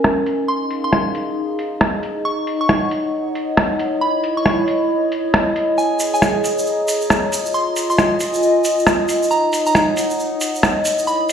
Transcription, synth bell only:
0.48 0.68 C6 medium
0.84 1.02 C6 medium
2.25 2.45 C#6 medium
2.61 2.79 C#6 medium
4.01 4.21 B5 medium
4.37 4.55 C#6 medium
5.78 5.97 G#5 medium
6.14 6.32 G#5 medium
7.54 7.74 C6 medium
7.90 8.08 C6 medium
9.31 9.50 A#5 medium
9.67 9.84 A#5 medium
11.07 11.27 B5 loud

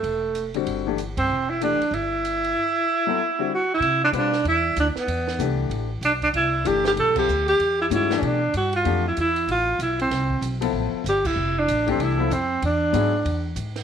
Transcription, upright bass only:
0.03 0.63 E1 medium
0.66 1.14 G1 medium
1.17 1.29 G2 medium
1.29 1.77 E1 medium
1.80 muted upright bass stroke soft
1.91 2.52 G1 medium
3.80 4.12 C3 medium
4.12 4.43 B2 medium
4.44 4.75 E2 medium
4.76 4.94 D2 medium
4.96 muted upright bass stroke soft
5.07 5.38 E2 medium
5.39 5.69 C2 medium
5.70 6.01 A1 medium
6.01 6.32 B1 medium
6.33 6.64 C2 medium
6.65 6.96 G1 medium
6.96 7.27 B1 medium
7.28 7.59 D2 medium
7.59 7.89 E2 medium
7.90 8.21 G2 medium
8.22 8.53 B2 medium
8.54 8.84 G2 medium
8.85 9.16 F2 medium
9.17 9.47 E2 medium
9.47 9.78 A1 medium
9.79 10.10 B1 medium
10.10 10.41 C2 medium
10.41 10.72 B1 medium
10.73 10.91 A1 medium
11.04 11.35 G1 medium
11.36 11.67 F1 medium
11.68 11.98 A1 medium
11.98 12.29 C2 medium
12.30 12.61 F2 medium
12.62 12.93 E2 medium
12.93 13.24 G#2 medium
13.25 13.55 E2 medium
13.56 13.83 G#2 medium

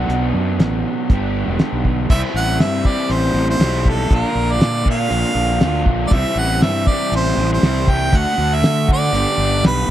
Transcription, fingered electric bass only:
0.08 0.32 B1 medium
0.34 0.58 F#2 medium
0.59 0.83 A1 medium
1.09 1.45 G1 medium
1.48 1.60 E1 medium
1.72 2.08 B1 medium
2.10 2.22 C2 medium
2.34 2.58 A1 medium
2.59 2.83 G2 medium
3.09 3.33 A1 medium
3.34 3.58 A1 medium
3.59 4.07 B1 medium
4.10 4.22 A#1 loud
4.35 4.59 A#1 medium
4.60 5.07 A#2 medium
5.10 5.23 A#1 medium
5.35 5.59 A#1 medium
5.61 5.85 D2 medium
5.85 6.09 A#1 medium
6.11 6.23 C2 medium
6.36 6.60 A1 loud
6.62 6.85 G2 medium
7.12 7.35 A1 medium
7.37 7.60 A1 medium
7.62 8.09 C2 medium
8.12 8.24 D2 loud
8.38 8.61 D2 loud
8.62 9.09 D3 medium
9.13 9.25 G1 medium
9.38 9.61 G1 medium
9.63 9.86 B1 medium

